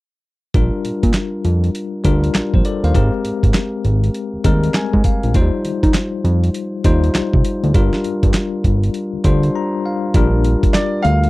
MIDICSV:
0, 0, Header, 1, 5, 480
1, 0, Start_track
1, 0, Key_signature, -2, "major"
1, 0, Tempo, 600000
1, 436, Time_signature, 4, 2, 24, 8
1, 9038, End_track
2, 0, Start_track
2, 0, Title_t, "Grand piano"
2, 0, Program_c, 0, 0
2, 8585, Note_on_c, 0, 74, 84
2, 8813, Note_off_c, 0, 74, 0
2, 8820, Note_on_c, 0, 77, 94
2, 9038, Note_off_c, 0, 77, 0
2, 9038, End_track
3, 0, Start_track
3, 0, Title_t, "Tine electric piano"
3, 0, Program_c, 1, 4
3, 436, Note_on_c, 1, 55, 77
3, 440, Note_on_c, 1, 62, 75
3, 441, Note_on_c, 1, 65, 77
3, 446, Note_on_c, 1, 70, 82
3, 598, Control_c, 1, 64, 127
3, 1173, Note_off_c, 1, 55, 0
3, 1175, Note_off_c, 1, 62, 0
3, 1175, Note_off_c, 1, 65, 0
3, 1178, Note_off_c, 1, 70, 0
3, 1631, Note_on_c, 1, 55, 82
3, 1637, Note_on_c, 1, 62, 71
3, 1640, Note_on_c, 1, 65, 71
3, 1643, Note_on_c, 1, 70, 84
3, 1879, Note_off_c, 1, 70, 0
3, 2036, Note_on_c, 1, 72, 60
3, 2040, Note_on_c, 1, 67, 50
3, 2116, Note_off_c, 1, 72, 0
3, 2118, Note_off_c, 1, 67, 0
3, 2123, Note_on_c, 1, 74, 62
3, 2127, Note_on_c, 1, 69, 58
3, 2202, Note_off_c, 1, 55, 0
3, 2205, Note_off_c, 1, 62, 0
3, 2207, Note_off_c, 1, 65, 0
3, 2264, Note_off_c, 1, 74, 0
3, 2266, Note_off_c, 1, 69, 0
3, 2274, Note_on_c, 1, 77, 68
3, 2279, Note_on_c, 1, 72, 53
3, 2358, Note_on_c, 1, 56, 82
3, 2362, Note_on_c, 1, 60, 73
3, 2366, Control_c, 1, 64, 0
3, 2366, Note_on_c, 1, 67, 73
3, 2366, Note_on_c, 1, 70, 90
3, 2499, Note_off_c, 1, 77, 0
3, 2501, Note_off_c, 1, 72, 0
3, 2526, Control_c, 1, 64, 127
3, 3094, Note_off_c, 1, 56, 0
3, 3096, Note_off_c, 1, 60, 0
3, 3098, Note_off_c, 1, 67, 0
3, 3098, Note_off_c, 1, 70, 0
3, 3554, Note_on_c, 1, 56, 81
3, 3558, Note_on_c, 1, 60, 67
3, 3564, Note_on_c, 1, 55, 73
3, 3566, Note_on_c, 1, 70, 90
3, 3801, Note_on_c, 1, 80, 70
3, 4022, Note_off_c, 1, 80, 0
3, 4041, Note_on_c, 1, 77, 63
3, 4124, Note_off_c, 1, 56, 0
3, 4126, Note_off_c, 1, 60, 0
3, 4128, Note_off_c, 1, 55, 0
3, 4130, Note_off_c, 1, 70, 0
3, 4262, Note_off_c, 1, 77, 0
3, 4281, Note_on_c, 1, 53, 67
3, 4283, Note_on_c, 1, 63, 72
3, 4286, Control_c, 1, 64, 0
3, 4286, Note_on_c, 1, 65, 71
3, 4290, Note_on_c, 1, 72, 88
3, 4333, Note_on_c, 1, 55, 79
3, 4344, Note_off_c, 1, 53, 0
3, 4412, Control_c, 1, 64, 127
3, 5017, Note_off_c, 1, 63, 0
3, 5018, Note_off_c, 1, 65, 0
3, 5020, Note_off_c, 1, 72, 0
3, 5041, Note_off_c, 1, 55, 0
3, 5477, Note_on_c, 1, 55, 76
3, 5479, Note_on_c, 1, 63, 75
3, 5483, Note_on_c, 1, 65, 79
3, 5486, Note_on_c, 1, 72, 89
3, 6045, Note_off_c, 1, 55, 0
3, 6046, Note_off_c, 1, 63, 0
3, 6048, Note_off_c, 1, 65, 0
3, 6050, Note_off_c, 1, 72, 0
3, 6195, Note_on_c, 1, 55, 81
3, 6197, Note_on_c, 1, 62, 76
3, 6201, Note_on_c, 1, 65, 72
3, 6204, Note_on_c, 1, 70, 90
3, 6205, Control_c, 1, 64, 0
3, 6333, Control_c, 1, 64, 127
3, 6932, Note_off_c, 1, 55, 0
3, 6933, Note_off_c, 1, 62, 0
3, 6935, Note_off_c, 1, 65, 0
3, 6937, Note_off_c, 1, 70, 0
3, 7393, Note_on_c, 1, 55, 81
3, 7398, Note_on_c, 1, 62, 78
3, 7401, Note_on_c, 1, 65, 68
3, 7401, Note_on_c, 1, 84, 62
3, 7403, Note_on_c, 1, 72, 86
3, 7622, Note_off_c, 1, 84, 0
3, 7644, Note_on_c, 1, 82, 64
3, 7863, Note_off_c, 1, 82, 0
3, 7885, Note_on_c, 1, 77, 60
3, 7963, Note_off_c, 1, 55, 0
3, 7966, Note_off_c, 1, 62, 0
3, 7967, Note_off_c, 1, 65, 0
3, 7968, Note_off_c, 1, 72, 0
3, 8104, Note_off_c, 1, 77, 0
3, 8119, Note_on_c, 1, 55, 86
3, 8124, Note_on_c, 1, 62, 76
3, 8125, Control_c, 1, 64, 0
3, 8126, Note_on_c, 1, 65, 80
3, 8131, Note_on_c, 1, 70, 98
3, 8269, Control_c, 1, 64, 127
3, 8855, Note_off_c, 1, 55, 0
3, 8857, Note_off_c, 1, 62, 0
3, 8858, Note_off_c, 1, 65, 0
3, 8860, Note_off_c, 1, 70, 0
3, 9038, End_track
4, 0, Start_track
4, 0, Title_t, "Analog synth bass"
4, 0, Program_c, 2, 38
4, 437, Note_on_c, 2, 34, 108
4, 565, Note_off_c, 2, 34, 0
4, 676, Note_on_c, 2, 46, 49
4, 737, Note_off_c, 2, 46, 0
4, 825, Note_on_c, 2, 46, 90
4, 901, Note_off_c, 2, 46, 0
4, 1158, Note_on_c, 2, 41, 83
4, 1361, Note_off_c, 2, 41, 0
4, 1638, Note_on_c, 2, 38, 87
4, 1841, Note_off_c, 2, 38, 0
4, 1876, Note_on_c, 2, 34, 48
4, 1937, Note_off_c, 2, 34, 0
4, 2029, Note_on_c, 2, 34, 85
4, 2103, Note_off_c, 2, 34, 0
4, 2269, Note_on_c, 2, 39, 85
4, 2343, Note_off_c, 2, 39, 0
4, 2356, Note_on_c, 2, 32, 110
4, 2485, Note_off_c, 2, 32, 0
4, 2598, Note_on_c, 2, 44, 53
4, 2658, Note_off_c, 2, 44, 0
4, 2746, Note_on_c, 2, 44, 80
4, 2822, Note_off_c, 2, 44, 0
4, 3077, Note_on_c, 2, 32, 92
4, 3280, Note_off_c, 2, 32, 0
4, 3470, Note_on_c, 2, 39, 46
4, 3504, Note_off_c, 2, 39, 0
4, 3558, Note_on_c, 2, 39, 84
4, 3761, Note_off_c, 2, 39, 0
4, 3948, Note_on_c, 2, 44, 105
4, 4023, Note_off_c, 2, 44, 0
4, 4190, Note_on_c, 2, 34, 84
4, 4264, Note_off_c, 2, 34, 0
4, 4277, Note_on_c, 2, 39, 104
4, 4405, Note_off_c, 2, 39, 0
4, 4518, Note_on_c, 2, 51, 49
4, 4578, Note_off_c, 2, 51, 0
4, 4665, Note_on_c, 2, 51, 92
4, 4741, Note_off_c, 2, 51, 0
4, 4995, Note_on_c, 2, 41, 102
4, 5199, Note_off_c, 2, 41, 0
4, 5479, Note_on_c, 2, 39, 89
4, 5681, Note_off_c, 2, 39, 0
4, 5715, Note_on_c, 2, 36, 46
4, 5776, Note_off_c, 2, 36, 0
4, 5869, Note_on_c, 2, 36, 87
4, 5943, Note_off_c, 2, 36, 0
4, 6108, Note_on_c, 2, 38, 94
4, 6183, Note_off_c, 2, 38, 0
4, 6196, Note_on_c, 2, 31, 121
4, 6325, Note_off_c, 2, 31, 0
4, 6438, Note_on_c, 2, 43, 53
4, 6498, Note_off_c, 2, 43, 0
4, 6585, Note_on_c, 2, 43, 97
4, 6661, Note_off_c, 2, 43, 0
4, 6914, Note_on_c, 2, 31, 96
4, 7119, Note_off_c, 2, 31, 0
4, 7306, Note_on_c, 2, 38, 48
4, 7342, Note_off_c, 2, 38, 0
4, 7397, Note_on_c, 2, 38, 89
4, 7601, Note_off_c, 2, 38, 0
4, 8117, Note_on_c, 2, 34, 108
4, 8449, Note_off_c, 2, 34, 0
4, 8838, Note_on_c, 2, 38, 102
4, 9038, Note_off_c, 2, 38, 0
4, 9038, End_track
5, 0, Start_track
5, 0, Title_t, "Drums"
5, 435, Note_on_c, 9, 36, 115
5, 435, Note_on_c, 9, 42, 68
5, 515, Note_off_c, 9, 36, 0
5, 515, Note_off_c, 9, 42, 0
5, 677, Note_on_c, 9, 42, 77
5, 757, Note_off_c, 9, 42, 0
5, 825, Note_on_c, 9, 36, 90
5, 826, Note_on_c, 9, 42, 55
5, 905, Note_off_c, 9, 36, 0
5, 906, Note_off_c, 9, 42, 0
5, 908, Note_on_c, 9, 39, 84
5, 911, Note_on_c, 9, 38, 97
5, 913, Note_on_c, 9, 42, 82
5, 988, Note_off_c, 9, 39, 0
5, 991, Note_off_c, 9, 38, 0
5, 993, Note_off_c, 9, 42, 0
5, 1156, Note_on_c, 9, 42, 64
5, 1236, Note_off_c, 9, 42, 0
5, 1310, Note_on_c, 9, 42, 52
5, 1390, Note_off_c, 9, 42, 0
5, 1398, Note_on_c, 9, 42, 65
5, 1478, Note_off_c, 9, 42, 0
5, 1636, Note_on_c, 9, 42, 74
5, 1637, Note_on_c, 9, 36, 87
5, 1716, Note_off_c, 9, 42, 0
5, 1717, Note_off_c, 9, 36, 0
5, 1789, Note_on_c, 9, 42, 56
5, 1869, Note_off_c, 9, 42, 0
5, 1876, Note_on_c, 9, 39, 89
5, 1877, Note_on_c, 9, 42, 72
5, 1878, Note_on_c, 9, 38, 101
5, 1956, Note_off_c, 9, 39, 0
5, 1957, Note_off_c, 9, 42, 0
5, 1958, Note_off_c, 9, 38, 0
5, 2029, Note_on_c, 9, 36, 95
5, 2109, Note_off_c, 9, 36, 0
5, 2118, Note_on_c, 9, 42, 81
5, 2198, Note_off_c, 9, 42, 0
5, 2272, Note_on_c, 9, 42, 46
5, 2352, Note_off_c, 9, 42, 0
5, 2356, Note_on_c, 9, 36, 118
5, 2359, Note_on_c, 9, 42, 61
5, 2436, Note_off_c, 9, 36, 0
5, 2439, Note_off_c, 9, 42, 0
5, 2597, Note_on_c, 9, 42, 78
5, 2677, Note_off_c, 9, 42, 0
5, 2746, Note_on_c, 9, 36, 96
5, 2749, Note_on_c, 9, 42, 57
5, 2826, Note_off_c, 9, 36, 0
5, 2829, Note_off_c, 9, 42, 0
5, 2832, Note_on_c, 9, 39, 80
5, 2834, Note_on_c, 9, 38, 108
5, 2836, Note_on_c, 9, 42, 81
5, 2912, Note_off_c, 9, 39, 0
5, 2914, Note_off_c, 9, 38, 0
5, 2916, Note_off_c, 9, 42, 0
5, 3077, Note_on_c, 9, 42, 63
5, 3157, Note_off_c, 9, 42, 0
5, 3229, Note_on_c, 9, 42, 48
5, 3309, Note_off_c, 9, 42, 0
5, 3315, Note_on_c, 9, 42, 70
5, 3395, Note_off_c, 9, 42, 0
5, 3555, Note_on_c, 9, 42, 76
5, 3556, Note_on_c, 9, 36, 92
5, 3635, Note_off_c, 9, 42, 0
5, 3636, Note_off_c, 9, 36, 0
5, 3708, Note_on_c, 9, 42, 58
5, 3788, Note_off_c, 9, 42, 0
5, 3792, Note_on_c, 9, 39, 82
5, 3793, Note_on_c, 9, 42, 71
5, 3794, Note_on_c, 9, 38, 98
5, 3872, Note_off_c, 9, 39, 0
5, 3873, Note_off_c, 9, 42, 0
5, 3874, Note_off_c, 9, 38, 0
5, 3947, Note_on_c, 9, 36, 94
5, 4027, Note_off_c, 9, 36, 0
5, 4032, Note_on_c, 9, 42, 86
5, 4036, Note_on_c, 9, 36, 94
5, 4112, Note_off_c, 9, 42, 0
5, 4116, Note_off_c, 9, 36, 0
5, 4187, Note_on_c, 9, 42, 48
5, 4267, Note_off_c, 9, 42, 0
5, 4274, Note_on_c, 9, 42, 67
5, 4275, Note_on_c, 9, 36, 117
5, 4354, Note_off_c, 9, 42, 0
5, 4355, Note_off_c, 9, 36, 0
5, 4517, Note_on_c, 9, 42, 77
5, 4597, Note_off_c, 9, 42, 0
5, 4665, Note_on_c, 9, 36, 93
5, 4668, Note_on_c, 9, 42, 57
5, 4745, Note_off_c, 9, 36, 0
5, 4748, Note_off_c, 9, 42, 0
5, 4752, Note_on_c, 9, 39, 84
5, 4754, Note_on_c, 9, 38, 104
5, 4756, Note_on_c, 9, 42, 86
5, 4832, Note_off_c, 9, 39, 0
5, 4834, Note_off_c, 9, 38, 0
5, 4836, Note_off_c, 9, 42, 0
5, 4998, Note_on_c, 9, 42, 68
5, 5078, Note_off_c, 9, 42, 0
5, 5149, Note_on_c, 9, 42, 51
5, 5229, Note_off_c, 9, 42, 0
5, 5235, Note_on_c, 9, 42, 72
5, 5315, Note_off_c, 9, 42, 0
5, 5475, Note_on_c, 9, 42, 74
5, 5476, Note_on_c, 9, 36, 96
5, 5555, Note_off_c, 9, 42, 0
5, 5556, Note_off_c, 9, 36, 0
5, 5629, Note_on_c, 9, 42, 60
5, 5709, Note_off_c, 9, 42, 0
5, 5716, Note_on_c, 9, 39, 82
5, 5717, Note_on_c, 9, 42, 72
5, 5718, Note_on_c, 9, 38, 97
5, 5796, Note_off_c, 9, 39, 0
5, 5797, Note_off_c, 9, 42, 0
5, 5798, Note_off_c, 9, 38, 0
5, 5868, Note_on_c, 9, 36, 96
5, 5948, Note_off_c, 9, 36, 0
5, 5956, Note_on_c, 9, 42, 81
5, 6036, Note_off_c, 9, 42, 0
5, 6109, Note_on_c, 9, 42, 45
5, 6189, Note_off_c, 9, 42, 0
5, 6195, Note_on_c, 9, 36, 118
5, 6196, Note_on_c, 9, 42, 67
5, 6275, Note_off_c, 9, 36, 0
5, 6276, Note_off_c, 9, 42, 0
5, 6343, Note_on_c, 9, 38, 64
5, 6423, Note_off_c, 9, 38, 0
5, 6435, Note_on_c, 9, 42, 78
5, 6515, Note_off_c, 9, 42, 0
5, 6584, Note_on_c, 9, 36, 92
5, 6584, Note_on_c, 9, 42, 59
5, 6664, Note_off_c, 9, 36, 0
5, 6664, Note_off_c, 9, 42, 0
5, 6670, Note_on_c, 9, 39, 83
5, 6672, Note_on_c, 9, 38, 99
5, 6674, Note_on_c, 9, 42, 79
5, 6750, Note_off_c, 9, 39, 0
5, 6752, Note_off_c, 9, 38, 0
5, 6754, Note_off_c, 9, 42, 0
5, 6914, Note_on_c, 9, 36, 80
5, 6916, Note_on_c, 9, 42, 60
5, 6994, Note_off_c, 9, 36, 0
5, 6996, Note_off_c, 9, 42, 0
5, 7068, Note_on_c, 9, 42, 51
5, 7148, Note_off_c, 9, 42, 0
5, 7153, Note_on_c, 9, 42, 68
5, 7233, Note_off_c, 9, 42, 0
5, 7393, Note_on_c, 9, 42, 74
5, 7396, Note_on_c, 9, 36, 96
5, 7473, Note_off_c, 9, 42, 0
5, 7476, Note_off_c, 9, 36, 0
5, 7546, Note_on_c, 9, 42, 60
5, 7626, Note_off_c, 9, 42, 0
5, 8114, Note_on_c, 9, 42, 68
5, 8115, Note_on_c, 9, 36, 112
5, 8194, Note_off_c, 9, 42, 0
5, 8195, Note_off_c, 9, 36, 0
5, 8356, Note_on_c, 9, 42, 78
5, 8436, Note_off_c, 9, 42, 0
5, 8505, Note_on_c, 9, 36, 98
5, 8507, Note_on_c, 9, 42, 59
5, 8585, Note_off_c, 9, 36, 0
5, 8587, Note_off_c, 9, 42, 0
5, 8592, Note_on_c, 9, 39, 83
5, 8594, Note_on_c, 9, 38, 109
5, 8596, Note_on_c, 9, 42, 90
5, 8672, Note_off_c, 9, 39, 0
5, 8674, Note_off_c, 9, 38, 0
5, 8676, Note_off_c, 9, 42, 0
5, 8837, Note_on_c, 9, 42, 66
5, 8917, Note_off_c, 9, 42, 0
5, 8988, Note_on_c, 9, 42, 48
5, 9038, Note_off_c, 9, 42, 0
5, 9038, End_track
0, 0, End_of_file